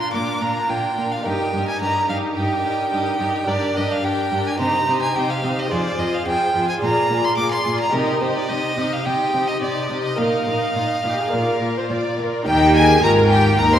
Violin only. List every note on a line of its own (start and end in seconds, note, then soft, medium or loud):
0.00 0.13 C6 medium
0.13 0.43 D6 medium
0.42 0.71 A#5 medium
0.69 1.14 G5 medium
1.12 1.27 F5 medium
1.26 1.67 G5 medium
1.68 1.81 G#5 medium
1.81 2.08 A#5 medium
2.09 2.17 F5 medium
2.37 3.50 G5 medium
3.48 3.78 D5 medium
3.77 3.93 D#5 medium
3.91 4.06 F5 medium
4.04 4.49 G5 medium
4.47 4.59 G#5 medium
4.60 5.01 A#5 medium
5.02 5.18 G#5 medium
5.16 5.32 G5 medium
5.30 5.61 F5 medium
5.59 5.73 D#5 medium
5.71 6.01 D5 medium
5.99 6.16 D#5 medium
6.14 6.27 F5 medium
6.27 6.68 G5 medium
6.69 6.75 G#5 medium
6.83 7.26 A#5 medium
7.25 7.37 C6 medium
7.37 7.51 D6 medium
7.51 7.79 C6 medium
7.81 7.95 A#5 medium
7.93 8.22 A#4 medium
8.21 8.35 C5 medium
8.36 8.51 D5 medium
8.49 8.94 D#5 medium
8.93 9.07 F5 medium
9.06 9.49 G5 medium
9.48 9.61 D#5 medium
9.61 10.03 D5 medium
10.05 10.20 D#5 medium
10.18 12.18 F5 medium
12.47 12.76 G5 medium
12.75 13.02 G#5 medium
13.03 13.11 A#5 medium
13.30 13.60 G5 medium
13.59 13.75 A#5 loud
13.73 13.79 C6 medium